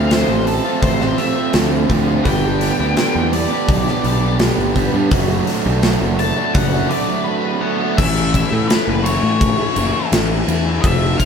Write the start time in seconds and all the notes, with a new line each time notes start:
Already playing: D2 A3 C4 F4 F5
0.11 F3 A3 C4 F4 C5, snare, open hi-hat
0.29 A1
0.46 F3 A3 C4 F4 A4, muted distorted electric guitar stroke, open hi-hat
0.64 A3 C4 F4
0.82 A1 C5, kick, open hi-hat
1.00 A3 C4 F4, snare
1.18 F3 A3 C4 F4 E5, open hi-hat
1.36 A3 C4 F4
1.53 D2 F3 A3 C4 F4, snare, open hi-hat
1.71 A3 C4 F4
1.89 D2 F3 A3 C4 F4, kick, open hi-hat
2.07 A3 C4 F4
2.24 G1 G3 B3 D4 G4 G5, kick, open hi-hat
2.43 B3 D4 G4
2.61 G3 B3 D4 G4, snare, open hi-hat
2.80 D2 B3 D4 G4
2.96 G3 B3 D4 G4, snare, open hi-hat
3.15 E2
3.32 G3 B3 D4 G4 D5, muted distorted electric guitar stroke, open hi-hat
3.49 B3 D4 G4
3.68 B1, kick, open hi-hat
3.85 B3 D4 G4, snare
4.03 B1 G3 B3 D4 G4, open hi-hat
4.22 B3 D4 G4
4.39 G3 B3 D4 G4, snare, open hi-hat
4.57 G1 B3 D4 G4
4.75 G3 B3 D4 G4, kick, open hi-hat
4.93 G2 B3 D4 G4
5.10 F#1 F#3 A3 D4 F#4, kick, open hi-hat
5.28 A3 D4 F#4
5.46 F#3 A3 D4 F#4, snare, open hi-hat
5.65 B1 A3 D4 F#4
5.81 F#3 A3 D4 F#4, snare, open hi-hat
6.01 F#1
6.18 F#3 A3 D4 F#4 A5, muted distorted electric guitar stroke, open hi-hat
6.36 A3 D4 F#4
6.55 F#1 F#5, kick, open hi-hat
6.73 A3 D4 F#4
6.89 F#3 A3 D4 F#4 D5, open hi-hat
7.08 A3 D4 F#4
7.24 F#3 A3 D4 F#4 B4
7.44 A3 D4 F#4
7.61 F#3 A3 D4 F#4 F#5
7.80 A3 D4 F#4
7.97 A1 A2 E3 A3 C#4 E4 E5, kick, crash
8.33 E3 A3 C#4 E4, kick, ride
8.52 A2
8.68 A2 E3 A3 C#4 B4, snare, ride
8.72 E4
8.87 F#1
9.04 E3 A3 C#4 C#5, ride
9.08 E4
9.23 A2 A3 C#4 E4
9.41 kick, ride
9.59 A3 C#4 E4
9.76 F#1 E3 A3 C#4 E4, ride
9.95 A3 C#4 E4
10.12 A1 A2 E3 A3 C#4 E4, snare, ride
10.48 E2 E3 A3 C#4 E4, ride
10.65 A3 C#4 E4
10.82 F1 F3 A3 C4 E5, kick, ride
10.86 F4
11.18 F3 A3 C4 F5, kick, ride